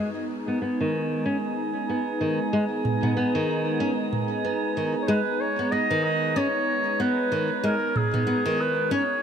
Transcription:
Already playing: analog synth pad G#3, synth texture G#4
0.00 analog synth pad B3 D#4 A#5
0.48 nylon-string guitar B3
0.62 nylon-string guitar B3
0.81 nylon-string guitar D#3
1.26 nylon-string guitar C#4
1.90 nylon-string guitar B3
2.21 nylon-string guitar D#3
2.53 nylon-string guitar G#3
2.85 mid tom
3.03 nylon-string guitar B3, mid tom
3.17 nylon-string guitar B3
3.35 nylon-string guitar D#3
3.80 nylon-string guitar C#4
4.13 mid tom
4.45 nylon-string guitar B3
4.77 nylon-string guitar D#3
5.02 clarinet C#5
5.08 nylon-string guitar G#3, clarinet B4
5.41 clarinet C#5
5.59 nylon-string guitar B3
5.72 nylon-string guitar B3, clarinet D#5
5.91 nylon-string guitar D#3
6.04 clarinet D#5
6.36 nylon-string guitar C#4, clarinet C#5
7.00 nylon-string guitar B3, clarinet B4
7.32 nylon-string guitar D#3
7.64 nylon-string guitar G#3, clarinet A#4
7.96 clarinet G#4, mid tom
8.14 nylon-string guitar B3, mid tom
8.27 nylon-string guitar B3
8.46 nylon-string guitar D#3
8.60 clarinet B4
8.91 nylon-string guitar C#4, clarinet C#5

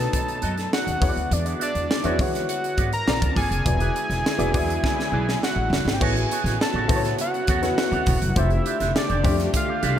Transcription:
Already playing: string section B2 A3 D#4, grand piano B3 D4 D#4 F#4 A4 B4 C#5, analog synth lead A5
0.13 muted clean electric guitar stroke, kick, closed hi-hat
0.27 muted clean electric guitar stroke, closed hi-hat
0.42 upright bass F#2, clean electric guitar B3 F#4 A4 D#5, closed hi-hat
0.57 muted clean electric guitar stroke, snare, closed hi-hat
0.71 analog synth lead F#5, muted clean electric guitar stroke, snare
0.86 upright bass D#2, muted clean electric guitar stroke, closed hi-hat
1.01 upright bass E2, string section D3 G#3 F#4, grand piano B3 E4 F#4 G#4 C#5, kick, open hi-hat
1.09 grand piano D5
1.16 upright bass D2, closed hi-hat
1.31 upright bass E2, analog synth lead D5, muted clean electric guitar stroke, closed hi-hat
1.45 clean electric guitar B3 F#4 G#4 D5, closed hi-hat
1.60 clean electric guitar B3 F#4 G#4 E5, analog synth lead D5, closed hi-hat
1.75 upright bass E2, closed hi-hat
1.89 muted clean electric guitar stroke, snare
2.04 upright bass E2, grand piano B3 E4 F#4 G#4 C#5, clean electric guitar B3 F#4 G#4 E5, closed hi-hat
2.19 upright bass E3, grand piano B3 E4 F#4 G#4 C#5, analog synth lead F#5, kick, open hi-hat
2.33 muted clean electric guitar stroke, snare, closed hi-hat
2.48 analog synth lead F#5, muted clean electric guitar stroke, closed hi-hat
2.63 muted clean electric guitar stroke, closed hi-hat
2.77 upright bass G#2, clean electric guitar B3 F#4 G#4 D5, kick, closed hi-hat
2.92 analog synth lead A#5, muted clean electric guitar stroke, closed hi-hat
3.06 upright bass A#1, string section D3 A#3 A5, grand piano C4 F4 A4 A#4 D5, muted clean electric guitar stroke, snare
3.21 upright bass D2, muted clean electric guitar stroke, kick, closed hi-hat
3.35 upright bass G1, clean electric guitar A#3 F4 A4 D5, analog synth lead G#5, kick, open hi-hat
3.50 upright bass F1, clean electric guitar A#3 F4 A4 D5, closed hi-hat
3.64 upright bass E1, string section G#3 E4, grand piano B3 E4 F#4 G#4 D5, muted clean electric guitar stroke, kick, closed hi-hat
3.79 clean electric guitar B3 E4 G#4 D5, closed hi-hat
3.94 clean electric guitar B3 E4 G#4 D5, closed hi-hat
4.08 upright bass E1, muted clean electric guitar stroke, snare, closed hi-hat
4.23 muted clean electric guitar stroke, snare
4.38 upright bass E1, grand piano B3 E4 F#4 G#4 D5, clean electric guitar B3 E4 G#4 D5, closed hi-hat
4.53 upright bass E2, grand piano B3 E4 F#4 G#4 D5, muted clean electric guitar stroke, kick, open hi-hat
4.67 muted clean electric guitar stroke, closed hi-hat
4.82 muted clean electric guitar stroke, kick, snare
4.96 muted clean electric guitar stroke, snare
5.12 upright bass B1, clean electric guitar B3 E4 G#4 D5
5.27 muted clean electric guitar stroke, snare
5.42 analog synth lead F#5, muted clean electric guitar stroke, snare
5.56 upright bass A1, muted clean electric guitar stroke
5.70 upright bass F#1, snare
5.85 upright bass G#1, muted clean electric guitar stroke, snare
5.93 analog synth lead G5
5.99 upright bass A1, string section C#3 B3 F#4, grand piano B3 E4 F#4 A4 C#5, clean electric guitar B3 F#4 A4 C#5, analog synth lead G#5, kick, crash
6.16 muted clean electric guitar stroke, closed hi-hat
6.31 clean electric guitar B3 F#4 A4 C#5, closed hi-hat
6.44 upright bass A1, clean electric guitar B3 F#4 A4 C#5, snare, closed hi-hat
6.60 analog synth lead A5, muted clean electric guitar stroke, snare
6.74 upright bass A1, clean electric guitar B3 F#4 A4 C#5
6.88 upright bass A2, grand piano B3 E4 F#4 A4 C5, clean electric guitar B3 F#4 A4 C#5, kick, open hi-hat
6.96 grand piano C#5
7.04 muted clean electric guitar stroke, snare, closed hi-hat
7.19 analog synth lead F#5, muted clean electric guitar stroke, closed hi-hat
7.33 muted clean electric guitar stroke, closed hi-hat
7.47 upright bass E2, clean electric guitar B3 F#4 A4 C#5, kick, closed hi-hat
7.62 grand piano B3 E4 F#4 A4 C#5, clean electric guitar B3 A4 E5, snare, closed hi-hat
7.78 muted clean electric guitar stroke, snare
7.92 upright bass D2, clean electric guitar B3 F#4 A4 C#5, closed hi-hat
8.06 upright bass E1, clean electric guitar B3 F#4 A4 C#5, kick, open hi-hat
8.21 upright bass F#1, muted clean electric guitar stroke, closed hi-hat
8.36 upright bass F1, string section D3 A3 G4, grand piano A3 D4 F4 G4 C5, clean electric guitar D4 G4 A4 D5, analog synth lead E5, kick, closed hi-hat
8.50 muted clean electric guitar stroke, closed hi-hat
8.65 clean electric guitar D4 G4 A4 D5, closed hi-hat
8.80 upright bass F1, clean electric guitar D4 G4 A4 E5, snare, closed hi-hat
8.94 analog synth lead D5, muted clean electric guitar stroke, snare
9.09 upright bass F1, clean electric guitar D4 G4 A4 D5, closed hi-hat
9.23 upright bass F2, grand piano A3 D4 F4 G4 C5, clean electric guitar D4 G4 A4 D5, kick, open hi-hat
9.31 grand piano D5
9.39 snare, closed hi-hat
9.54 analog synth lead F5, muted clean electric guitar stroke, kick, closed hi-hat
9.68 clean electric guitar D4 G4 A4 D5
9.82 upright bass C2, clean electric guitar D4 G4 A4 D5, analog synth lead F5, closed hi-hat

